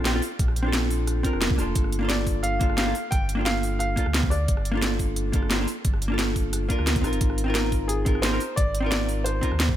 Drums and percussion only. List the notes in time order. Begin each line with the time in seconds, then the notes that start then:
0.05 snare, closed hi-hat
0.22 open hi-hat
0.39 kick, closed hi-hat
0.48 cross-stick
0.56 closed hi-hat
0.73 snare, closed hi-hat
0.90 open hi-hat
1.07 cross-stick, closed hi-hat
1.25 kick, closed hi-hat
1.33 cross-stick
1.42 snare, closed hi-hat
1.50 kick
1.59 cross-stick, open hi-hat
1.75 kick, closed hi-hat
1.84 cross-stick
1.92 closed hi-hat
2.10 snare, closed hi-hat
2.27 kick, open hi-hat
2.44 closed hi-hat
2.61 kick, closed hi-hat
2.70 cross-stick
2.78 snare, closed hi-hat
2.95 open hi-hat
3.12 kick, closed hi-hat
3.29 closed hi-hat
3.46 snare, closed hi-hat
3.63 open hi-hat
3.80 cross-stick, closed hi-hat
3.97 kick, closed hi-hat
4.06 cross-stick
4.14 snare, closed hi-hat
4.23 kick
4.31 cross-stick, open hi-hat
4.48 kick, closed hi-hat
4.57 cross-stick
4.65 closed hi-hat
4.82 snare, closed hi-hat
4.99 kick, open hi-hat
5.16 closed hi-hat
5.33 kick, closed hi-hat
5.42 cross-stick
5.51 snare, closed hi-hat
5.68 open hi-hat
5.85 kick, closed hi-hat
5.94 cross-stick
6.02 closed hi-hat
6.19 snare, closed hi-hat
6.36 kick, open hi-hat
6.53 cross-stick, closed hi-hat
6.70 kick, closed hi-hat
6.79 cross-stick
6.87 snare, closed hi-hat
6.96 kick, closed hi-hat
7.04 cross-stick, open hi-hat
7.13 closed hi-hat
7.21 kick, closed hi-hat
7.30 cross-stick
7.38 closed hi-hat
7.55 snare, closed hi-hat
7.72 kick, open hi-hat
7.89 closed hi-hat
8.06 kick, closed hi-hat
8.15 cross-stick
8.23 snare, closed hi-hat
8.40 open hi-hat
8.57 kick, closed hi-hat
8.75 closed hi-hat
8.92 snare, closed hi-hat
9.09 open hi-hat
9.26 cross-stick, closed hi-hat
9.43 kick, closed hi-hat
9.52 cross-stick
9.60 snare, closed hi-hat
9.69 kick